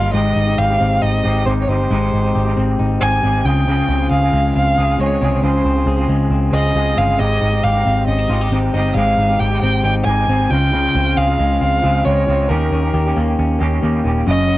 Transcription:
Already playing: clean electric guitar D#3 G3 A#3 D#4 F4, violin F5
0.12 picked electric bass G#1, clean electric guitar G#3 C4 D#4 G4, violin D#5
0.36 picked electric bass G#1, clean electric guitar D#4
0.45 clean electric guitar C4 D#4 G4
0.58 picked electric bass G#1, clean electric guitar G4, violin F5
0.68 clean electric guitar C4 D#4 G4
0.80 picked electric bass G#1, clean electric guitar C4
1.02 picked electric bass G#1, clean electric guitar D#4, violin D#5
1.24 picked electric bass G#1, clean electric guitar G#3 C4 D#4 G4
1.46 picked electric bass G#1, clean electric guitar G#3 C4 D#4 G4, violin C5
1.62 violin C#5
1.68 picked electric bass G1, clean electric guitar G#3 C4 D#4 G4, violin C5
1.90 picked electric bass G#1, clean electric guitar G#3 C4 D#4 G4
2.13 picked electric bass G#1, clean electric guitar D#4
2.22 clean electric guitar C4 D#4 G4
2.35 picked electric bass G#1, clean electric guitar G4
2.45 clean electric guitar C4 D#4 G4
2.57 picked electric bass G#1, clean electric guitar C4
2.79 picked electric bass G#1, clean electric guitar D#4
3.00 picked electric bass G#1, clean electric guitar G#3 C4 D#4 G4, violin G#5
3.23 picked electric bass G#1, clean electric guitar G#3 C4 D#4 G4
3.44 picked electric bass C#2, clean electric guitar C#3 G#3 C4 F4 G#4, violin G5
3.68 clean electric guitar C#3 G#3 C4 F4 G#4
3.89 picked electric bass C#2, clean electric guitar C4
4.00 clean electric guitar C4 F4 G#4
4.11 picked electric bass C#2, clean electric guitar G#4, violin F5
4.23 clean electric guitar C4 F4 G#4
4.33 picked electric bass C#2, clean electric guitar G#3
4.55 picked electric bass C#2, clean electric guitar C4, violin F5
4.78 picked electric bass C#2, clean electric guitar G#3 C4 F4 G#4
4.98 picked electric bass C#2, clean electric guitar G#3 C4 F4 G#4, violin C#5
5.21 picked electric bass C2, clean electric guitar G#3 C4 F4 G#4
5.42 picked electric bass C#2, clean electric guitar C#3 G#3 C4 F4 G#4, violin C5
5.65 picked electric bass C#2, clean electric guitar C4
5.75 clean electric guitar C4 F4 G#4
5.86 picked electric bass C#2, clean electric guitar G#4
5.96 clean electric guitar C4 F4 G#4
6.08 picked electric bass C#2, clean electric guitar G#3
6.30 picked electric bass C#2, clean electric guitar C4
6.51 picked electric bass C#2, clean electric guitar G#3 C4 F4 G#4, violin D#5
6.73 picked electric bass C#2, clean electric guitar G#3 C4 F4 G#4
6.96 picked electric bass G1, clean electric guitar G#3 C4 F4 G#4, violin F5
7.18 picked electric bass G#1, clean electric guitar G#3 C4 D#4 G4, violin D#5
7.41 picked electric bass G#1, clean electric guitar D#4
7.51 clean electric guitar C4 D#4 G4
7.63 picked electric bass G#1, clean electric guitar G4, violin F5
7.73 clean electric guitar C4 D#4 G4
7.85 picked electric bass G#1, clean electric guitar C4
8.07 picked electric bass G#1, clean electric guitar C#4, violin D#5
8.19 clean electric guitar D#4
8.28 picked electric bass G#1, clean electric guitar G#3 C4 D#4 F4 G4
8.41 clean electric guitar G4
8.50 picked electric bass G#1, clean electric guitar G#3 C4 D#4
8.54 clean electric guitar G4
8.74 picked electric bass G1, clean electric guitar G#3 C4 D#4 G4, violin D#5
8.95 picked electric bass G#1, clean electric guitar G#3 C4 D#4, violin F5
8.99 clean electric guitar G4
9.18 picked electric bass G#1, clean electric guitar D#4
9.28 clean electric guitar C4 D#4 G4
9.39 picked electric bass G#1, clean electric guitar G4, violin G5
9.51 clean electric guitar C4 D#4 G4
9.61 picked electric bass G#1, clean electric guitar C4, violin G5
9.84 picked electric bass G#1, clean electric guitar D#4, violin G5
10.05 picked electric bass G#1, clean electric guitar G#3 C4 D#4, violin G#5
10.09 clean electric guitar G4
10.28 picked electric bass G#1, clean electric guitar G#3 C4 D#4 G4
10.50 picked electric bass C#2, clean electric guitar C#3 F3 G#3 C4 F4, violin G5
10.71 clean electric guitar C#3 F3 G#3 C4 F4
10.95 picked electric bass C#2, clean electric guitar C4
11.04 clean electric guitar G#3 C4 F4
11.17 picked electric bass C#2, clean electric guitar G#4, violin F5
11.27 clean electric guitar G#3 C4 F4
11.39 picked electric bass C#2, clean electric guitar G#3
11.61 picked electric bass C#2, clean electric guitar C4, violin F5
11.82 picked electric bass C#2, clean electric guitar F3 G#3 C4 F4 G#4
12.04 picked electric bass C#2, clean electric guitar F3 G#3 C4 F4, violin C#5
12.27 picked electric bass C#2, clean electric guitar F3 G#3 C4 F4
12.48 picked electric bass D#2, clean electric guitar D#3 A#3 C#4 G4, violin A#4
12.72 picked electric bass D#2, clean electric guitar C#4
12.83 clean electric guitar A#3 C#4 G4
12.94 picked electric bass D#2, clean electric guitar G4
13.06 clean electric guitar A#3 C#4 G4
13.16 picked electric bass D#2, clean electric guitar A#3
13.39 picked electric bass D#2, clean electric guitar C#4
13.59 picked electric bass D#2, clean electric guitar D#3 A#3 C#4 G4
13.81 picked electric bass D#2, clean electric guitar D#3 A#3 C#4 G4
14.04 picked electric bass D#1, clean electric guitar D#3 A#3 C#4 G4
14.26 picked electric bass F#1, clean electric guitar F#2 C#3 F#3 A#3 C#4 F#4, violin D#5
14.48 clean electric guitar C#4

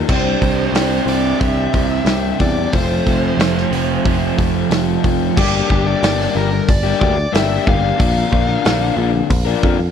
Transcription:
0.09 picked electric bass C2, overdriven electric guitar C3 G3 C4 D4 G4, lead electric guitar C5, kick, crash
0.42 picked electric bass C2, kick, open hi-hat
0.72 picked electric bass C2, overdriven electric guitar G3 C4 D4 G4, snare, open hi-hat
1.06 picked electric bass C2, lead electric guitar D5, open hi-hat
1.40 picked electric bass C2, overdriven electric guitar C3 G3 C4 D4 G4, lead electric guitar E5, kick, open hi-hat
1.74 picked electric bass C2, overdriven electric guitar C4 D4 G4, kick, open hi-hat
2.05 picked electric bass C2, overdriven electric guitar G3 C4 D4, snare, open hi-hat
2.10 overdriven electric guitar G4
2.40 picked electric bass E2, lead electric guitar D5, kick, open hi-hat
2.73 picked electric bass F1, overdriven electric guitar F2 C3 F3 A3 C4 F4, lead electric guitar C5, kick, open hi-hat
3.07 picked electric bass F1, kick, open hi-hat
3.37 picked electric bass F1, overdriven electric guitar F3 A3, snare, open hi-hat
3.42 overdriven electric guitar C4 F4
3.58 snare
3.71 picked electric bass F1, open hi-hat
4.05 picked electric bass F1, overdriven electric guitar F2 C3 F3 A3 C4, kick, open hi-hat
4.09 overdriven electric guitar F4
4.37 picked electric bass F1, overdriven electric guitar F3 A3 C4 F4, kick, open hi-hat
4.71 picked electric bass F1, overdriven electric guitar F3 A3 C4 F4, snare, open hi-hat
5.04 picked electric bass F1, kick, open hi-hat
5.36 picked electric bass G1, overdriven electric guitar G2 D3 G3 A#3 D4 G4, lead electric guitar G4, kick, crash
5.69 picked electric bass G1, overdriven electric guitar G3 A#3 D4 G4, kick
5.85 overdriven electric guitar G3 A#3 D4 G4, lead electric guitar D5
6.02 picked electric bass G1, overdriven electric guitar G2 D3 G3 A#3 D4 G4, snare, open hi-hat
6.21 snare
6.34 picked electric bass G1, overdriven electric guitar G3 A#3 D4 G4, lead electric guitar A#4
6.51 muted overdriven electric guitar stroke
6.69 picked electric bass G1, lead electric guitar D5, kick, open hi-hat
6.83 overdriven electric guitar G3 A#3 D4 G4
7.00 picked electric bass D2, lead electric guitar D5, kick
7.17 muted overdriven electric guitar stroke
7.32 picked electric bass G1, overdriven electric guitar G2 D3 G3 A#3 D4 G4, lead electric guitar E5, snare, open hi-hat
7.64 picked electric bass G1, overdriven electric guitar G3 A#3 D4 G4, kick
7.69 lead electric guitar F5
7.81 overdriven electric guitar G3 A#3 D4 G4
7.97 picked electric bass A#1, overdriven electric guitar A#2 D3 F3 A#3 D4 A#4, lead electric guitar F5, kick, open hi-hat
8.31 picked electric bass A#1, overdriven electric guitar F3 A#3 D4 A#4, kick
8.47 overdriven electric guitar F3 A#3 D4 A#4
8.63 picked electric bass A#1, overdriven electric guitar A#2 D3 F3 A#3 D4 A#4, snare, open hi-hat
8.95 picked electric bass A#1, overdriven electric guitar F3 A#3 D4 A#4
9.13 muted overdriven electric guitar stroke
9.30 picked electric bass A#1, kick, open hi-hat
9.45 overdriven electric guitar F3 A#3 D4 A#4
9.63 picked electric bass F2, kick
9.78 muted overdriven electric guitar stroke

